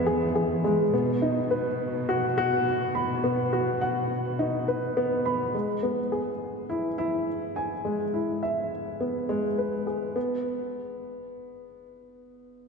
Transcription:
0.00 0.90 E2 medium
0.00 0.64 G#3 medium
0.00 0.94 B3 medium
0.00 0.94 E4 medium
0.00 0.94 E5 medium
0.00 0.94 G#5 medium
0.06 0.23 G#4 medium
0.35 0.62 G#4 medium
0.64 0.80 G#3 medium
0.93 5.51 B2 medium
0.93 1.10 B3 medium
1.22 1.38 D#4 medium
1.51 1.67 B4 medium
2.09 2.25 F#4 medium
2.38 2.65 F#4 medium
2.95 3.11 B5 medium
3.24 3.40 B3 medium
3.53 3.80 F#4 medium
3.81 4.09 F#5 medium
4.39 4.66 D#4 medium
4.68 4.95 B4 medium
4.97 5.24 B3 medium
5.26 5.42 B5 medium
5.54 5.71 G#3 medium
5.83 5.99 B3 medium
6.12 6.28 G#4 medium
6.70 6.86 E4 medium
6.98 7.26 E4 medium
7.56 7.72 G#5 medium
7.85 8.01 G#3 medium
8.14 8.41 E4 medium
8.43 8.70 E5 medium
9.01 9.28 B3 medium
9.29 9.46 G#3 medium
9.58 9.86 B4 medium
9.87 10.14 G#4 medium
10.16 10.43 B3 medium

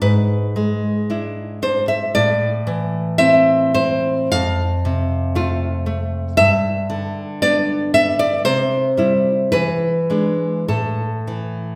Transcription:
0.02 2.11 G#2 medium
0.02 1.58 B4 loud
0.56 2.15 G#3 medium
1.10 1.61 D4 medium
1.10 2.12 E4 medium
1.62 2.15 D4 medium
1.62 1.88 C5 loud
1.88 2.14 E5 loud
2.15 4.28 A2 medium
2.15 3.15 D5 loud
2.67 4.32 E3 medium
3.18 3.73 C4 medium
3.18 4.28 E4 medium
3.18 3.72 E5 loud
3.74 4.32 C4 medium
3.74 4.29 C5 loud
4.32 6.33 F2 medium
4.32 6.33 F5 loud
4.85 6.37 C3 medium
5.35 5.85 A3 medium
5.35 6.34 F4 medium
5.86 6.37 A3 medium
6.37 8.42 G2 medium
6.37 7.38 E5 loud
6.90 8.47 D3 medium
7.42 7.93 B3 medium
7.42 8.43 D4 medium
7.42 7.93 D5 loud
7.94 8.46 B3 medium
7.94 8.19 E5 loud
8.19 8.44 D5 loud
8.45 9.50 C3 medium
8.45 9.49 C5 loud
8.97 9.49 G3 medium
8.97 9.49 E4 medium
9.52 10.65 E3 medium
9.52 10.63 B4 loud
10.10 10.64 G#3 medium
10.10 10.64 D4 medium
10.68 11.75 A2 medium
10.68 11.75 A4 medium
11.27 11.75 E3 medium

